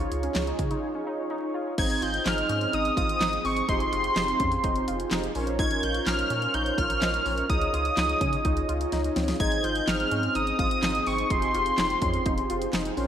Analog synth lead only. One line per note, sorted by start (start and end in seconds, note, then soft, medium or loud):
1.79 2.04 G#6 loud
2.03 2.28 G6 loud
2.27 2.76 F6 loud
2.74 2.97 D#6 loud
2.98 3.47 D#6 loud
3.45 3.68 C#6 medium
3.69 5.08 C6 loud
5.59 5.85 G#6 loud
5.83 6.06 G6 loud
6.07 6.56 F6 loud
6.54 6.78 G6 loud
6.78 7.46 F6 loud
7.50 8.88 D#6 loud
9.40 9.65 G#6 loud
9.64 9.89 G6 loud
9.88 10.37 F6 loud
10.36 10.59 D#6 loud
10.59 11.09 D#6 loud
11.07 11.32 C#6 medium
11.31 12.74 C6 loud